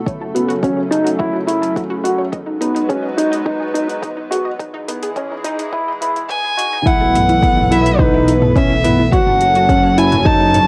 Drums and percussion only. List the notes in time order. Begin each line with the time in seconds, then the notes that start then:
0.06 kick, closed hi-hat
0.36 closed hi-hat
0.50 closed hi-hat
0.63 kick, closed hi-hat
0.92 closed hi-hat
1.07 closed hi-hat
1.20 kick
1.48 closed hi-hat
1.63 closed hi-hat
1.76 kick, closed hi-hat
2.05 closed hi-hat
2.33 kick, closed hi-hat
2.62 closed hi-hat
2.76 closed hi-hat
2.90 kick, closed hi-hat
3.18 closed hi-hat
3.33 closed hi-hat
3.46 kick
3.75 closed hi-hat
3.89 closed hi-hat
4.03 kick, closed hi-hat
4.32 closed hi-hat
4.60 kick, closed hi-hat
4.88 closed hi-hat
5.03 closed hi-hat
5.16 kick, closed hi-hat
5.45 closed hi-hat
5.59 closed hi-hat
5.73 kick
6.02 closed hi-hat
6.16 closed hi-hat
6.29 kick, closed hi-hat
6.59 closed hi-hat
6.86 kick, closed hi-hat
7.15 closed hi-hat, mid tom
7.29 closed hi-hat
7.43 kick, closed hi-hat
7.57 mid tom
7.72 closed hi-hat
7.86 closed hi-hat
7.99 kick, mid tom
8.28 closed hi-hat
8.42 mid tom
8.56 kick, closed hi-hat
8.85 closed hi-hat, mid tom
9.12 kick, closed hi-hat
9.27 mid tom
9.41 closed hi-hat
9.55 closed hi-hat
9.69 kick, closed hi-hat, mid tom
9.98 closed hi-hat
10.12 closed hi-hat, mid tom
10.26 kick
10.54 closed hi-hat, mid tom